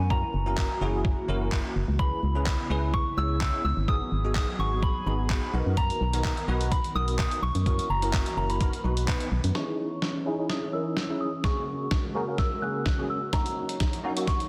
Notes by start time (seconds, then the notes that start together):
0.00 F#2
0.10 E3 A#3 C#4 E4 F#4 A#4 A#5, kick
0.34 F#1
0.46 C#4 E4 F#4 A#4
0.58 kick, clap
0.81 F#1 C#4 E4 F#4 G#4
1.05 kick
1.28 F#1 C#4 E4 F#4 A#4
1.52 kick, clap
1.76 F#1
1.88 C#2
1.99 C#3 B3 C#4 E4 G#4 B4 B5, kick
2.23 C#2
2.35 C#4 E4 G#4 B4
2.46 kick, clap
2.70 C#2 C#4 E4 G#4 B4
2.94 C#6, kick
3.17 C#2 C#4 E4 G#4 C#5 E6
3.41 kick, clap
3.65 C#2 E6
3.77 G#1
3.88 F#3 B3 D#4 F#4 G#4 D#6, kick
4.12 G#1
4.24 B3 D#4 F#4 G#4
4.35 D#6, kick, clap
4.59 G#1 B3 D#4 F#4 G#4 C#6
4.83 B5, kick
5.06 G#1 B3 D#4 F#4 G#4 B5
5.30 kick, clap
5.53 B1 D#3 B3 D#4 F#4 A#4
5.66 F#2
5.77 A#5, kick, closed hi-hat
5.90 closed hi-hat
6.01 B1
6.13 B3 D#4 F#4 A#4, closed hi-hat
6.24 kick, clap, closed hi-hat
6.37 closed hi-hat
6.48 B1 B3 D#4 F#4 B4
6.61 closed hi-hat
6.72 B5, kick, closed hi-hat
6.84 closed hi-hat
6.95 B1 B3 D#4 F#4 A#4 D#6
7.08 closed hi-hat
7.19 kick, clap, closed hi-hat
7.31 closed hi-hat
7.42 B1 C#6
7.55 F#2, closed hi-hat
7.66 E3 A#3 C#4 E4 F#4 A#4, kick, closed hi-hat
7.79 closed hi-hat
7.90 F#1 A#5
8.02 C#4 E4 F#4 A#4, closed hi-hat
8.13 kick, clap, closed hi-hat
8.26 closed hi-hat
8.37 F#1 C#4 E4 F#4 A#4 A#5
8.50 B5, closed hi-hat
8.61 D#3 B3 D#4 F#4 A#4 B4, kick, closed hi-hat
8.73 closed hi-hat
8.84 B1 B3 D#4 F#4 B4
8.97 closed hi-hat
9.08 kick, clap, closed hi-hat
9.20 closed hi-hat
9.32 B1
9.44 F#2, closed hi-hat
9.55 E3 C#4 D#4 E4 G#4 C#5 C#6, snare
10.02 snare
10.26 C#4 D#4 E4 G#4
10.38 C#4 D#4 E4 G#4
10.50 D#6, snare
10.73 C#4 D#4 E4 A#4 E6
10.97 snare
11.09 C#4 D#4 E4 G#4
11.21 D#6
11.44 C#3 G#3 A#3 C#4 F#4 G#4 A#4 C#6, kick, snare
11.91 kick, snare
12.15 C#3 A#3 C#4 F#4 A#4
12.27 C#3 A#3 C#4 F#4 A#4
12.38 E6, kick, snare
12.62 C#3 A#3 C#4 F#4 G#4 F#6
12.86 kick, snare
12.98 C#3 A#3 C#4 F#4 G#4
13.10 E6
13.33 F#3 A#3 C#4 D#4 F#4 C#5 A#5, kick, snare, closed hi-hat
13.46 closed hi-hat
13.69 closed hi-hat
13.80 kick, snare, closed hi-hat
13.93 closed hi-hat
14.04 A#3 C#4 D#4 F#4
14.16 A#3 C#4 D#4 F#4, closed hi-hat
14.27 C#6, kick, snare, closed hi-hat
14.40 closed hi-hat